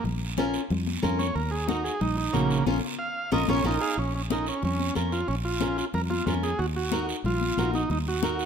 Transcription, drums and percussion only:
0.05 low conga, long guiro
0.22 high conga
0.37 high conga, short guiro
0.54 short guiro
0.70 high conga, low conga, long guiro
0.87 high conga
1.03 high conga, low conga, short guiro
1.19 high conga, short guiro
1.36 long guiro
1.52 high conga
1.69 high conga, short guiro
1.85 short guiro
2.01 high conga, low conga, long guiro
2.34 high conga, short guiro
2.50 short guiro
2.66 high conga, long guiro
3.32 high conga, long guiro
3.48 high conga, long guiro
3.64 high conga, long guiro
4.14 high conga
4.30 high conga, short guiro
4.46 short guiro
4.63 high conga, low conga, long guiro
4.79 high conga
4.95 high conga, short guiro
5.12 short guiro
5.28 long guiro
5.44 high conga
5.60 high conga, short guiro
5.78 short guiro
5.94 high conga, low conga, long guiro
6.10 high conga
6.27 high conga, low conga, short guiro
6.43 high conga, short guiro
6.59 long guiro
6.76 high conga
6.92 high conga, short guiro
7.09 short guiro
7.25 high conga, low conga, long guiro
7.41 high conga
7.57 high conga, short guiro
7.74 high conga, short guiro
7.90 low conga, long guiro
8.07 high conga
8.23 high conga, short guiro
8.39 short guiro

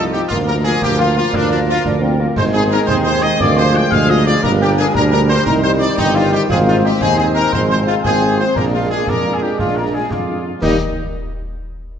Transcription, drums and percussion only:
0.14 snare
0.31 concert bass drum, snare, crash
0.82 concert bass drum, snare
1.33 concert bass drum, snare
1.85 concert bass drum, snare
2.36 concert bass drum, snare, crash
2.88 concert bass drum, snare
3.40 concert bass drum, snare
3.92 concert bass drum, snare
4.09 snare
4.26 snare
4.44 concert bass drum, snare, crash
4.95 concert bass drum, snare
5.46 concert bass drum, snare
5.98 concert bass drum, snare
6.16 snare
6.33 snare
6.50 concert bass drum, snare, crash
7.01 concert bass drum, snare
7.53 concert bass drum, snare
8.05 concert bass drum, snare
8.22 snare
8.39 snare
8.56 concert bass drum, snare, crash
9.07 concert bass drum, snare
9.59 concert bass drum, snare
10.11 concert bass drum, snare
10.62 concert bass drum, snare, crash

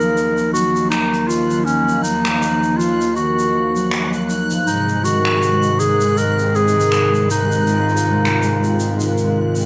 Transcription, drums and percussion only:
0.01 shaker
0.17 shaker
0.37 shaker
0.55 shaker
0.76 shaker
0.92 finger snap, shaker
1.14 shaker
1.30 shaker
1.50 shaker
1.67 shaker
1.89 shaker
2.04 shaker
2.25 finger snap, shaker
2.42 shaker
2.63 shaker
2.80 shaker
3.01 shaker
3.17 shaker
3.39 shaker
3.76 shaker
3.91 finger snap, shaker
4.13 shaker
4.30 shaker
4.50 shaker
4.67 shaker
4.89 shaker
5.05 shaker
5.25 finger snap
5.43 shaker
5.63 shaker
5.80 shaker
6.01 shaker
6.17 shaker
6.39 shaker
6.55 shaker
6.68 shaker
6.80 shaker
6.92 finger snap, shaker
7.14 shaker
7.30 shaker
7.52 shaker
7.67 shaker
7.89 shaker
7.97 shaker
8.25 finger snap, shaker
8.43 shaker
8.64 shaker
8.80 shaker
9.00 shaker
9.18 shaker
9.55 shaker
9.60 shaker

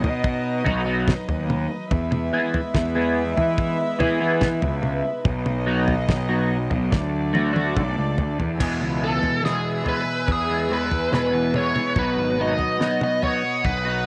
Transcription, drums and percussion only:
0.04 floor tom
0.24 kick
0.66 floor tom, mid tom
1.08 kick, snare, mid tom
1.29 floor tom
1.50 mid tom
1.91 kick, floor tom
2.12 mid tom
2.54 floor tom
2.75 kick, snare
3.37 floor tom
3.58 kick
4.00 floor tom, mid tom
4.41 kick, snare, mid tom
4.62 floor tom
4.83 mid tom
5.25 kick, floor tom
5.46 mid tom
5.88 floor tom
6.09 kick, snare
6.71 floor tom
6.92 kick, snare
7.35 high tom
7.56 high tom
7.77 kick, mid tom
8.18 floor tom
8.40 floor tom
8.60 kick, floor tom, crash
9.23 floor tom
9.46 snare
9.86 floor tom
10.28 kick, floor tom
10.91 floor tom
11.13 snare, mid tom
11.54 mid tom
11.76 mid tom
11.96 kick, floor tom
12.59 floor tom
12.81 snare
13.01 mid tom
13.23 floor tom
13.65 kick, floor tom

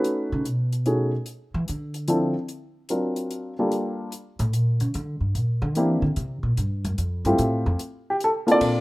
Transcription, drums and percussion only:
0.04 closed hi-hat
0.45 closed hi-hat
0.73 closed hi-hat
0.86 closed hi-hat
1.26 closed hi-hat
1.68 closed hi-hat
1.94 closed hi-hat
2.08 closed hi-hat
2.48 closed hi-hat
2.89 closed hi-hat
3.16 closed hi-hat
3.31 closed hi-hat
3.72 closed hi-hat
4.12 closed hi-hat
4.39 closed hi-hat
4.53 closed hi-hat
4.80 closed hi-hat
4.94 closed hi-hat
5.35 closed hi-hat
5.75 closed hi-hat
6.16 closed hi-hat
6.57 closed hi-hat
6.85 closed hi-hat
6.98 closed hi-hat
7.25 closed hi-hat
7.38 closed hi-hat
7.79 closed hi-hat
8.20 closed hi-hat
8.48 closed hi-hat
8.61 kick, ride

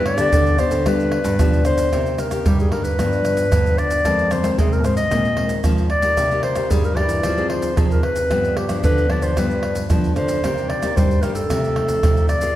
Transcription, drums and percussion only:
0.06 pandeiro, tamborim
0.18 pandeiro, tamborim, shaker, surdo
0.33 pandeiro, shaker, surdo
0.47 pandeiro, shaker
0.58 pandeiro, tamborim, shaker, surdo
0.71 pandeiro, shaker, surdo
0.86 pandeiro, tamborim, shaker, surdo
1.00 pandeiro, shaker
1.12 pandeiro, tamborim
1.24 pandeiro, shaker, surdo
1.39 pandeiro, tamborim, shaker, surdo
1.53 pandeiro, shaker, surdo
1.65 pandeiro, tamborim, shaker
1.78 pandeiro, shaker
1.93 pandeiro, tamborim, shaker, surdo
2.06 pandeiro, shaker
2.18 pandeiro, tamborim, shaker
2.31 pandeiro, tamborim, shaker, surdo
2.46 pandeiro, shaker, surdo
2.59 pandeiro, shaker
2.72 pandeiro, tamborim, surdo
2.85 pandeiro, shaker, surdo
2.99 pandeiro, tamborim, shaker, surdo
3.13 pandeiro, shaker
3.25 pandeiro, tamborim, shaker
3.37 pandeiro, shaker, surdo
3.52 pandeiro, tamborim, shaker, surdo
3.66 pandeiro, shaker, surdo
3.78 pandeiro, tamborim, shaker
3.91 pandeiro, shaker
4.05 pandeiro, tamborim, shaker, surdo
4.19 pandeiro, shaker
4.31 pandeiro, tamborim, shaker
4.44 pandeiro, tamborim, shaker, surdo
4.59 pandeiro, shaker, surdo
4.73 pandeiro, shaker
4.84 pandeiro, tamborim, shaker
4.97 pandeiro, shaker, surdo
5.11 pandeiro, tamborim, shaker, surdo
5.25 pandeiro, shaker
5.37 pandeiro, tamborim
5.49 pandeiro, shaker, surdo
5.64 pandeiro, tamborim, shaker, surdo
5.78 pandeiro, shaker, surdo
5.90 pandeiro, tamborim
6.02 pandeiro, shaker
6.17 pandeiro, tamborim, shaker, surdo
6.31 pandeiro, shaker
6.43 pandeiro, tamborim
6.56 pandeiro, tamborim, shaker, surdo
6.71 pandeiro, shaker, surdo
6.84 pandeiro, shaker
6.97 pandeiro, tamborim, surdo
7.09 pandeiro, shaker, surdo
7.23 pandeiro, tamborim, shaker, surdo
7.38 pandeiro, shaker
7.50 pandeiro, tamborim
7.62 pandeiro, shaker, surdo
7.77 pandeiro, tamborim, shaker, surdo
7.91 pandeiro, shaker, surdo
8.03 pandeiro, tamborim
8.16 pandeiro, shaker
8.31 pandeiro, tamborim, shaker, surdo
8.45 pandeiro, shaker
8.57 pandeiro, tamborim
8.69 pandeiro, tamborim, shaker, surdo
8.84 pandeiro, shaker, surdo
8.98 pandeiro, shaker
9.10 pandeiro, tamborim
9.22 pandeiro, shaker, surdo
9.37 pandeiro, tamborim, shaker, surdo
9.51 pandeiro, shaker
9.63 pandeiro, tamborim
9.75 pandeiro, shaker, surdo
9.90 pandeiro, tamborim, shaker, surdo
10.04 pandeiro, shaker, surdo
10.16 pandeiro, tamborim, shaker
10.28 pandeiro, shaker
10.44 pandeiro, tamborim, shaker, surdo
10.58 pandeiro, shaker
10.70 pandeiro, tamborim
10.83 pandeiro, tamborim, shaker, surdo
10.97 pandeiro, shaker, surdo
11.11 pandeiro, shaker
11.23 pandeiro, tamborim, shaker
11.35 pandeiro, shaker, surdo
11.50 pandeiro, tamborim, shaker, surdo
11.64 pandeiro, shaker
11.76 pandeiro, tamborim
11.88 pandeiro, shaker, surdo
12.03 pandeiro, tamborim, shaker, surdo
12.17 pandeiro, shaker, surdo
12.29 pandeiro, tamborim, shaker
12.41 pandeiro, shaker

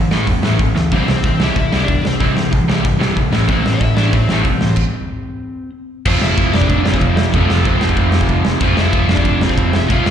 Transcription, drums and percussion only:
0.11 snare
0.27 kick, open hi-hat
0.43 snare
0.59 kick, open hi-hat
0.76 snare
0.92 kick, open hi-hat
1.08 snare
1.24 kick, open hi-hat
1.40 snare
1.56 kick, open hi-hat
1.73 snare
1.88 kick, open hi-hat
2.05 snare
2.20 kick, open hi-hat
2.37 snare
2.53 kick, open hi-hat
2.70 snare
2.85 kick, open hi-hat
3.01 snare
3.17 kick, open hi-hat
3.33 snare
3.49 kick, open hi-hat
3.66 snare
3.81 kick, open hi-hat
3.97 snare
4.13 kick, open hi-hat
4.29 snare
4.45 kick, open hi-hat
4.61 snare
4.76 kick, crash
6.05 kick, crash
6.21 snare
6.37 kick, ride
6.54 snare
6.62 kick
6.69 kick, ride
6.86 snare
6.94 kick
7.01 kick, ride
7.17 snare
7.34 kick, ride
7.50 snare
7.65 kick, ride
7.81 snare
7.89 kick
7.97 kick, ride
8.12 snare
8.21 kick
8.29 kick, ride
8.45 snare
8.61 kick, ride
8.77 snare
8.93 kick, ride
9.09 snare
9.17 kick
9.25 kick, ride
9.41 snare
9.49 kick
9.58 kick, ride
9.73 snare
9.90 kick, ride
10.06 snare

